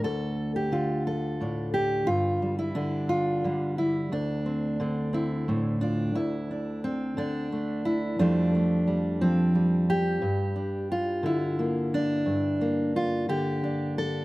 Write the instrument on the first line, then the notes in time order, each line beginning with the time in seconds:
steel-string acoustic guitar
Already playing: D3 D4
0.04 D2 A4
0.56 G4
0.72 D3 F4
1.07 A4
1.40 A2 D4
1.74 G4
2.07 G2 F4
2.42 G3
2.59 E4
2.75 D3 D4
3.09 F4
3.44 D3 G3
3.78 E4
4.12 D2 D4
4.46 C4
4.80 D3 C4
5.13 C4 E4
5.48 A2 C4
5.81 D4 F4
6.15 D2 E4
6.51 D4
6.84 C4
7.17 D3 D4
7.52 A3
7.85 E4
8.19 F2 F3 G3 A3 D4
8.55 A3
8.87 G3
9.21 F3 C4
9.55 G3
9.90 G4
10.22 G2
10.56 D4
10.92 F4
11.23 D3 E4
11.59 A#3
11.94 D4
12.26 G2
12.61 A#3
12.96 F4
13.29 D3 G4
13.64 D4
13.98 A4